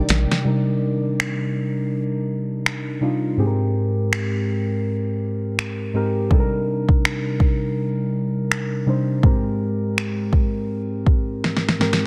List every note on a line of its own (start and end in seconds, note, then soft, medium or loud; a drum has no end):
0.00 0.17 C3 medium
0.00 0.44 C3 medium
0.00 0.44 D#3 medium
0.00 0.17 G3 medium
0.00 0.41 A#3 medium
0.00 0.18 D4 medium
0.00 0.18 D#4 medium
0.00 0.18 A#4 medium
0.00 0.44 D5 medium
0.00 0.47 G5 medium
0.09 0.26 A#1 medium
0.09 snare medium
0.09 closed hi-hat medium
0.31 snare medium
0.44 1.56 C3 medium
0.44 1.57 G3 medium
0.44 1.57 D4 medium
0.44 1.57 D#4 medium
0.44 1.58 A#4 medium
1.20 finger snap loud
2.66 finger snap loud
3.00 3.30 C3 medium
3.00 3.30 G3 medium
3.00 3.31 D4 medium
3.00 3.31 D#4 medium
3.00 3.32 F4 medium
3.37 4.49 G#2 medium
3.37 4.49 G#3 medium
3.37 4.50 C4 medium
3.37 4.50 G4 medium
3.37 3.47 G#4 medium
3.47 4.54 A#4 medium
4.13 finger snap loud
5.59 finger snap loud
5.93 6.23 G#2 medium
5.93 6.23 G#3 medium
5.93 6.24 C4 medium
5.93 6.24 G4 medium
5.93 6.24 A#4 medium
6.30 7.42 C3 medium
6.30 7.42 G3 medium
6.30 7.43 D4 medium
6.30 7.43 D#4 medium
6.30 6.39 A4 medium
6.30 kick loud
6.40 7.47 A#4 medium
6.89 kick medium
7.05 finger snap loud
7.40 kick medium
8.52 finger snap loud
8.86 9.16 C3 medium
8.86 9.16 G3 medium
8.86 9.16 D4 medium
8.86 9.17 D#4 medium
8.86 9.17 C5 medium
9.23 10.34 G#2 medium
9.23 10.35 G#3 medium
9.23 10.35 C4 medium
9.23 10.36 G4 medium
9.23 10.36 A#4 medium
9.23 kick loud
9.98 finger snap loud
10.33 kick medium
11.06 kick medium
11.44 snare soft
11.57 snare soft
11.69 snare medium
11.79 12.06 G#2 medium
11.79 12.06 G#3 medium
11.79 12.06 C4 medium
11.79 12.06 G4 medium
11.79 12.06 A#4 medium
11.79 snare medium
11.93 snare medium